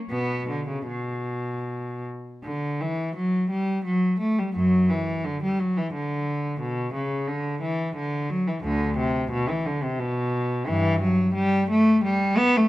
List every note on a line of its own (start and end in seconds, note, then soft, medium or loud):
0.10 0.46 B2 medium
0.10 0.48 B3 medium
0.49 0.68 D3 medium
0.68 0.87 C#3 medium
0.87 2.03 B2 medium
2.44 2.78 D3 medium
2.81 3.16 E3 medium
3.16 3.50 F#3 medium
3.50 3.85 G3 medium
3.85 4.19 F#3 medium
4.20 4.37 A3 medium
4.38 4.56 G3 medium
4.54 4.88 F#2 medium
4.54 4.89 F#3 medium
4.90 5.25 E3 medium
5.25 5.42 D3 medium
5.43 5.59 G3 medium
5.59 5.76 F#3 medium
5.78 5.94 E3 medium
5.93 6.60 D3 medium
6.61 6.94 B2 medium
6.94 7.27 C#3 medium
7.28 7.62 D3 medium
7.62 7.95 E3 medium
7.96 8.29 D3 medium
8.30 8.47 F#3 medium
8.47 8.64 E3 medium
8.63 8.95 D2 medium
8.63 8.97 D3 medium
8.97 9.31 C3 medium
9.31 9.48 B2 medium
9.50 9.66 E3 medium
9.66 9.83 D3 medium
9.83 10.00 C3 medium
9.99 10.67 B2 medium
10.68 11.00 G2 medium
10.68 11.02 E3 medium
11.01 11.35 F#3 medium
11.34 11.69 G3 loud
11.70 12.04 A3 loud
12.04 12.38 G3 medium
12.38 12.56 B3 loud
12.57 12.69 A3 medium